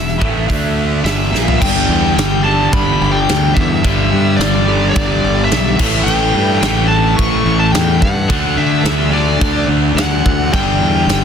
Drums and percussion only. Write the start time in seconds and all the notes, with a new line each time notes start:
0.08 snare
0.21 kick
0.50 kick, open hi-hat
1.06 snare, open hi-hat
1.35 snare
1.48 floor tom
1.62 kick, crash
2.18 snare, crash
2.73 kick, crash
3.29 snare, crash
3.57 kick
3.84 kick, crash
4.41 snare, crash
4.96 kick, crash
5.51 snare, crash
5.79 kick, crash
6.08 crash
6.63 snare, crash
7.19 kick, crash
7.75 snare, crash
8.02 kick
8.30 kick, crash
8.85 snare, crash
9.41 kick, crash
9.98 snare, crash
10.26 kick
10.53 kick, crash
11.09 snare, crash